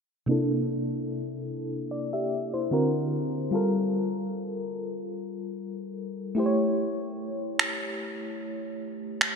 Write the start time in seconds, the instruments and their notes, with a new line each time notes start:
0.26 fm electric piano C3 A#3 D4 E4
0.31 fm electric piano A4
1.91 fm electric piano D5
2.13 fm electric piano G4 E5
2.54 fm electric piano E4 C5
2.71 fm electric piano D3 C4 F#4 A#4
3.51 fm electric piano G3 F4 A4
3.55 fm electric piano A#4
6.35 fm electric piano A3 E4 G4
6.39 fm electric piano C5
6.46 fm electric piano C#5
7.59 finger snap
9.21 finger snap